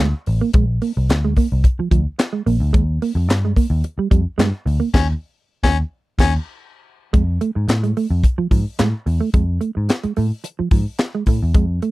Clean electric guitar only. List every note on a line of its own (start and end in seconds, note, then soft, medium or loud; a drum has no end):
0.27 muted clean electric guitar stroke soft
0.41 0.49 A#3 medium
0.55 0.64 G#3 medium
0.82 0.91 A#3 medium
0.97 muted clean electric guitar stroke soft
1.10 muted clean electric guitar stroke medium
1.25 1.32 G#3 medium
1.38 1.46 A#3 medium
1.65 muted clean electric guitar stroke soft
1.80 1.87 F3 medium
1.91 2.00 F3 medium
2.19 muted clean electric guitar stroke soft
2.33 2.41 G#3 medium
2.46 2.55 A#3 medium
2.73 2.82 G#3 medium
3.02 3.11 A#3 medium
3.17 muted clean electric guitar stroke soft
3.30 muted clean electric guitar stroke soft
3.45 3.52 G#3 medium
3.57 3.65 A#3 medium
3.84 muted clean electric guitar stroke soft
3.99 4.06 G3 medium
4.11 4.20 G3 medium
4.38 4.47 G#3 medium
4.66 muted clean electric guitar stroke soft
4.80 4.88 A#3 medium
7.13 7.22 G#3 medium
7.41 7.50 A3 medium
7.55 muted clean electric guitar stroke soft
7.68 muted clean electric guitar stroke soft
7.83 7.91 G#3 medium
7.97 8.06 A3 medium
8.24 muted clean electric guitar stroke soft
8.38 8.46 F3 medium
8.51 8.60 F3 medium
8.79 8.88 G#3 medium
9.06 muted clean electric guitar stroke soft
9.21 9.29 A3 medium
9.34 9.43 G#3 medium
9.61 9.70 A3 medium
9.75 muted clean electric guitar stroke soft
9.89 muted clean electric guitar stroke soft
10.04 10.11 G#3 medium
10.17 10.26 A3 medium
10.44 muted clean electric guitar stroke soft
10.59 10.67 F3 medium
10.72 10.81 F3 medium
11.00 muted clean electric guitar stroke soft
11.15 11.22 G#3 medium
11.29 11.37 A3 medium
11.55 11.64 G#3 medium
11.83 11.91 A3 medium